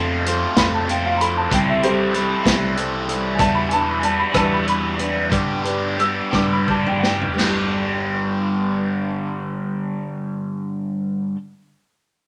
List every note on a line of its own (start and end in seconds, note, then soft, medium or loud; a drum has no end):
0.00 0.25 F2 medium
0.00 0.44 F2 medium
0.00 0.25 C3 medium
0.00 0.24 F3 medium
0.00 0.26 A3 medium
0.00 0.27 C4 medium
0.00 0.27 F4 medium
0.00 0.26 A4 medium
0.25 0.57 F3 medium
0.25 0.56 A3 medium
0.25 0.55 C4 medium
0.25 0.54 F4 medium
0.25 closed hi-hat medium
0.29 0.56 A4 medium
0.55 1.52 F2 medium
0.55 1.20 F2 medium
0.55 1.20 C3 medium
0.55 0.86 F3 medium
0.55 0.88 A3 medium
0.55 0.89 C4 medium
0.55 0.89 F4 medium
0.55 0.88 A4 medium
0.55 0.72 B5 medium
0.55 kick medium
0.55 snare loud
0.55 closed hi-hat medium
0.74 0.88 A5 medium
0.88 1.48 F3 medium
0.88 1.49 A3 medium
0.88 1.50 C4 medium
0.88 1.50 F4 medium
0.88 1.03 G5 medium
0.88 closed hi-hat medium
0.92 1.20 A4 medium
1.06 1.19 F5 medium
1.17 1.20 A#5 medium
1.21 1.52 C4 soft
1.21 1.52 E4 soft
1.21 1.51 A4 soft
1.21 1.35 B5 medium
1.21 closed hi-hat medium
1.37 1.51 A5 medium
1.49 2.32 C2 medium
1.49 2.12 C3 medium
1.49 2.12 E3 medium
1.49 1.84 G3 medium
1.49 1.82 C4 medium
1.49 1.81 E4 loud
1.49 1.66 G5 medium
1.49 kick loud
1.49 closed hi-hat medium
1.54 1.84 A4 medium
1.68 1.82 E5 medium
1.81 2.13 G3 medium
1.81 2.13 C4 soft
1.81 2.15 E4 medium
1.81 3.04 G4 medium
1.81 2.15 A4 soft
1.81 3.04 C5 medium
1.81 closed hi-hat medium
1.86 2.15 E4 soft
2.12 2.45 E3 medium
2.12 2.45 G3 medium
2.12 2.43 C4 medium
2.12 2.42 E4 medium
2.12 closed hi-hat medium
2.16 2.45 A4 medium
2.43 3.40 C2 medium
2.43 3.08 C3 medium
2.43 2.74 E3 medium
2.43 2.76 G3 medium
2.43 2.76 C4 medium
2.43 2.76 E4 medium
2.43 2.76 A4 medium
2.43 kick medium
2.43 snare loud
2.43 closed hi-hat medium
2.75 3.36 E3 medium
2.75 3.40 G3 medium
2.75 3.37 C4 medium
2.75 3.38 E4 medium
2.75 3.07 A4 medium
2.75 closed hi-hat medium
3.08 3.38 G3 soft
3.08 3.38 C4 soft
3.08 3.39 E4 soft
3.08 3.39 A4 soft
3.08 closed hi-hat medium
3.35 4.01 E2 medium
3.35 4.02 B2 medium
3.35 3.70 D4 medium
3.35 3.39 G#5 medium
3.39 4.21 E2 medium
3.39 3.71 E3 loud
3.39 3.71 G3 loud
3.39 3.70 B3 medium
3.39 3.68 E4 medium
3.39 3.70 B4 medium
3.39 3.54 A5 loud
3.39 kick loud
3.39 closed hi-hat medium
3.55 3.69 B5 medium
3.69 4.00 E3 soft
3.69 4.02 G3 medium
3.69 4.03 B3 medium
3.69 4.03 E4 medium
3.69 4.02 B4 soft
3.69 3.72 G#5 medium
3.69 closed hi-hat medium
3.73 4.01 D4 soft
3.73 3.86 A5 medium
3.90 4.03 B5 medium
4.00 4.33 E3 medium
4.00 4.33 G3 medium
4.00 4.33 D4 medium
4.00 4.03 G#5 medium
4.00 closed hi-hat medium
4.04 4.33 B3 medium
4.04 4.31 E4 medium
4.04 4.33 B4 medium
4.04 4.18 A5 medium
4.20 4.33 B5 medium
4.32 5.32 E2 medium
4.32 4.99 E2 medium
4.32 4.99 B2 medium
4.32 4.63 E3 medium
4.32 4.65 G3 medium
4.32 4.66 B3 medium
4.32 4.66 D4 medium
4.32 4.66 E4 medium
4.32 4.66 B4 medium
4.32 4.36 G#5 soft
4.32 kick medium
4.32 cross-stick loud
4.32 closed hi-hat medium
4.37 4.50 A5 medium
4.54 4.67 B5 medium
4.65 5.28 E3 medium
4.65 5.31 G3 medium
4.65 5.32 B3 medium
4.65 4.99 D4 medium
4.65 5.30 E4 medium
4.65 4.97 B4 medium
4.65 closed hi-hat medium
4.70 5.31 B5 medium
4.98 5.29 D4 soft
4.98 5.31 E4 soft
4.98 5.30 B4 soft
4.98 closed hi-hat medium
5.30 5.97 G2 medium
5.30 6.19 G2 medium
5.30 5.98 D3 medium
5.30 5.66 G3 medium
5.30 5.64 B3 loud
5.30 5.63 D4 loud
5.30 5.62 G4 loud
5.30 5.63 B4 medium
5.30 kick medium
5.30 closed hi-hat medium
5.63 5.96 G3 soft
5.63 5.97 B3 medium
5.63 5.98 D4 medium
5.63 5.99 G4 medium
5.63 5.98 B4 soft
5.63 closed hi-hat medium
5.97 6.31 G3 medium
5.97 6.31 B3 medium
5.97 6.31 D4 medium
5.97 6.30 G4 medium
5.97 6.32 B4 medium
5.97 6.32 E6 medium
5.97 closed hi-hat soft
6.31 7.26 G2 medium
6.31 7.04 G2 medium
6.31 7.04 D3 medium
6.31 6.66 G3 medium
6.31 6.67 B3 medium
6.31 6.68 D4 medium
6.31 6.69 G4 medium
6.31 6.68 B4 medium
6.31 6.50 D6 medium
6.31 kick medium
6.31 snare medium
6.53 6.68 B5 medium
6.67 7.38 G3 medium
6.67 7.38 B3 medium
6.67 7.38 D4 medium
6.67 7.39 G4 medium
6.67 7.03 B4 medium
6.67 6.86 A5 medium
6.67 kick medium
6.86 7.02 G5 medium
6.86 mid tom medium
6.99 7.04 F#5 medium
6.99 7.39 G5 medium
6.99 snare medium
7.04 7.41 D4 soft
7.04 7.41 G4 soft
7.04 7.40 B4 soft
7.21 floor tom medium
7.34 11.30 G3 medium
7.38 11.33 G1 medium
7.38 11.34 G2 medium
7.38 11.35 D3 medium
7.38 11.36 G3 medium
7.38 11.36 B3 medium
7.38 11.37 D4 medium
7.38 11.37 G4 medium
7.38 snare medium
7.38 crash medium
7.49 11.44 G4 medium
7.55 11.51 B4 medium